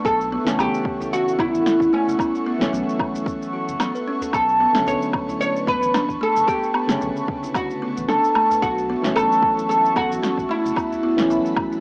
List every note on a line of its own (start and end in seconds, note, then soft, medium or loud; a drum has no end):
0.00 8.59 C#6 medium
0.05 0.38 B1 loud
0.05 0.31 B3 medium
0.05 4.30 A4 medium
0.05 0.60 A4 loud
0.05 4.30 E5 medium
0.05 4.30 F#5 medium
0.05 kick loud
0.05 shaker medium
0.21 shaker soft
0.33 0.45 B3 loud
0.45 0.54 F#1 medium
0.45 1.77 C#3 medium
0.45 1.76 E3 loud
0.45 0.58 A3 loud
0.45 1.77 A3 medium
0.45 1.78 C#4 loud
0.45 snare medium
0.45 shaker medium
0.58 0.68 B1 medium
0.58 0.67 B3 loud
0.58 1.09 G4 loud
0.58 low woodblock medium
0.58 shaker medium
0.74 shaker soft
0.85 kick loud
1.01 1.12 E4 medium
1.01 udu medium
1.01 shaker medium
1.13 1.40 F#4 loud
1.13 shaker medium
1.28 shaker soft
1.39 1.48 F#1 medium
1.39 1.65 B3 loud
1.39 1.93 E4 medium
1.39 kick loud
1.39 low woodblock medium
1.54 1.61 A1 medium
1.54 shaker medium
1.66 1.92 C#4 loud
1.66 snare medium
1.66 shaker medium
1.80 1.88 A1 medium
1.80 kick medium
1.80 shaker soft
1.93 2.07 A3 loud
1.93 4.03 C#4 medium
2.07 2.15 F#1 loud
2.07 2.19 A3 medium
2.07 shaker medium
2.19 2.45 B3 medium
2.19 kick loud
2.19 low woodblock medium
2.19 shaker medium
2.35 shaker soft
2.46 2.60 B3 loud
2.59 2.68 F#1 medium
2.59 3.90 E3 loud
2.59 3.91 F#3 medium
2.59 2.72 A3 medium
2.59 3.92 A3 loud
2.59 3.92 C#4 loud
2.59 snare medium
2.59 shaker medium
2.73 2.82 B1 medium
2.73 2.81 B3 loud
2.73 shaker medium
2.89 shaker soft
2.99 kick loud
2.99 low woodblock medium
3.15 3.26 E4 medium
3.15 udu medium
3.15 shaker medium
3.26 kick loud
3.26 shaker medium
3.42 shaker soft
3.53 3.67 F#4 medium
3.68 3.76 F#1 medium
3.68 shaker medium
3.80 3.94 B3 medium
3.80 snare medium
3.80 low woodblock medium
3.80 shaker medium
3.95 4.06 B4 medium
3.95 shaker soft
4.07 4.20 C#4 loud
4.21 4.33 A4 medium
4.21 udu medium
4.21 shaker medium
4.33 4.66 B1 medium
4.33 4.59 B3 medium
4.33 4.87 A4 loud
4.33 8.58 B4 medium
4.33 11.80 A5 medium
4.33 kick loud
4.33 low woodblock medium
4.33 shaker medium
4.49 shaker soft
4.60 4.74 B3 loud
4.73 4.82 F#1 medium
4.73 6.04 D3 loud
4.73 6.05 F#3 medium
4.73 4.86 A3 medium
4.73 6.06 A3 loud
4.73 6.06 C#4 loud
4.73 snare medium
4.73 shaker medium
4.87 4.96 B1 loud
4.87 4.95 B3 loud
4.87 5.39 C#5 loud
4.87 shaker medium
5.02 shaker soft
5.13 kick loud
5.13 low woodblock medium
5.28 5.40 E4 medium
5.28 udu medium
5.28 shaker medium
5.41 5.68 C#5 loud
5.41 shaker medium
5.56 shaker soft
5.67 5.76 F#1 medium
5.67 5.93 B3 loud
5.67 6.22 B4 loud
5.67 kick loud
5.82 5.90 A1 medium
5.82 shaker medium
5.94 6.20 D4 loud
5.94 snare medium
5.94 low woodblock medium
5.94 shaker medium
6.09 6.16 A1 medium
6.09 kick medium
6.09 shaker soft
6.21 6.34 A3 loud
6.21 6.47 A4 medium
6.35 6.44 F#1 loud
6.35 6.47 A3 medium
6.35 shaker medium
6.47 6.73 B3 medium
6.47 7.51 G4 loud
6.47 kick loud
6.47 shaker medium
6.63 shaker soft
6.74 6.88 B3 loud
6.74 low woodblock medium
6.87 6.97 F#1 medium
6.87 8.20 C#3 medium
6.87 8.19 D3 loud
6.87 7.01 A3 loud
6.87 8.20 A3 medium
6.87 snare medium
6.87 shaker medium
6.91 8.21 C#4 loud
7.01 7.11 B1 medium
7.01 7.10 B3 loud
7.01 shaker medium
7.17 shaker soft
7.28 kick loud
7.43 7.54 E4 medium
7.43 udu medium
7.43 shaker medium
7.55 8.08 F#4 loud
7.55 kick loud
7.55 low woodblock medium
7.55 shaker soft
7.71 shaker soft
7.82 8.08 B3 loud
7.97 8.05 A1 medium
7.97 shaker medium
8.08 8.34 D4 loud
8.08 8.47 A4 medium
8.08 snare medium
8.08 shaker medium
8.24 shaker soft
8.35 8.49 A3 loud
8.35 low woodblock medium
8.50 8.62 A3 medium
8.50 udu medium
8.50 shaker medium
8.62 8.95 B1 loud
8.62 8.88 B3 medium
8.62 9.15 F#4 loud
8.62 11.80 F#4 medium
8.62 11.80 E5 medium
8.62 10.75 C#6 medium
8.62 kick loud
8.62 shaker soft
8.78 shaker soft
8.90 9.03 B3 loud
9.02 9.12 F#1 medium
9.02 10.33 E3 loud
9.02 10.34 F#3 loud
9.02 9.15 A3 loud
9.02 10.35 A3 loud
9.02 snare medium
9.02 shaker medium
9.06 10.35 C#4 loud
9.16 9.25 B1 medium
9.16 9.24 B3 loud
9.16 9.68 A4 loud
9.16 low woodblock medium
9.16 shaker medium
9.32 shaker soft
9.43 kick loud
9.57 9.69 E4 medium
9.57 udu medium
9.57 shaker medium
9.69 9.96 A4 loud
9.69 shaker medium
9.86 shaker soft
9.96 10.05 F#1 medium
9.96 10.22 B3 loud
9.96 10.52 F#4 medium
9.96 kick loud
9.96 low woodblock medium
10.10 10.18 A1 medium
10.10 shaker medium
10.23 10.48 C#4 loud
10.23 snare medium
10.23 shaker medium
10.38 10.45 A1 medium
10.38 kick medium
10.38 shaker soft
10.49 10.63 A3 loud
10.49 11.80 E4 medium
10.64 10.72 F#1 loud
10.64 10.76 A3 medium
10.64 shaker medium
10.76 11.02 B3 medium
10.76 11.80 B5 medium
10.76 kick loud
10.76 low woodblock medium
10.76 shaker medium
10.92 udu medium
10.92 shaker soft
11.03 11.17 B3 loud
11.17 11.26 F#1 medium
11.17 11.80 E3 loud
11.17 11.80 F#3 loud
11.17 11.30 A3 loud
11.17 11.80 A3 medium
11.17 11.80 C#4 loud
11.17 snare medium
11.17 shaker medium
11.30 11.39 B1 medium
11.30 11.39 B3 loud
11.30 shaker soft
11.46 shaker soft
11.56 kick loud
11.56 low woodblock medium
11.72 11.80 E4 medium
11.72 udu medium
11.72 shaker medium